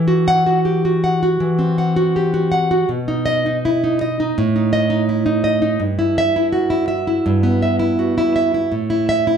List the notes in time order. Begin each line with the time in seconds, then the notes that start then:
Already playing: E3
0.08 F#4
0.28 F#5
0.46 F#4
0.65 G4
0.85 F#4
1.04 F#5
1.23 F#4
1.40 E3
1.59 C4
1.78 F#5
1.96 F#4
2.16 G4
2.34 F#4
2.52 F#5
2.71 F#4
2.89 B2
3.08 D#4
3.26 D#5
3.46 D#4
3.65 E4
3.84 D#4
4.01 D#5
4.20 D#4
4.38 A2
4.56 D#4
4.73 D#5
4.90 D#4
5.09 E4
5.26 D#4
5.44 D#5
5.62 D#4
5.80 G2
5.99 E4
6.18 E5
6.36 E4
6.52 F#4
6.70 E4
6.88 E5
7.07 E4
7.26 G2
7.43 B3
7.62 E5
7.79 E4
7.99 F#4
8.18 E4
8.36 E5
8.54 E4
8.72 A2
8.90 E4
9.09 E5
9.27 E4